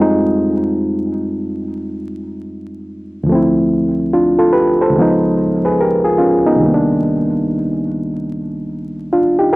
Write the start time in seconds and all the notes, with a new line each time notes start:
Already playing: F2 G3 G#3 F4
0.00 C4 D#4
3.23 D2 F3
3.29 A3 C4
3.35 E4
4.13 D4 F4
4.38 F4 A4
4.52 G4 B4
4.81 A4 C5
4.89 C#2 D#3
4.95 F3 G#3 B3
5.01 D#4
5.65 G#4 B4
5.81 G4 A#4
6.05 F4 G#4
6.19 C#4 F4
6.47 B3 D#4
6.56 C2 D#3
6.62 G3 A#3
6.68 C4
6.74 D4
9.13 D4 F4
9.39 D#4 G4
9.53 A#4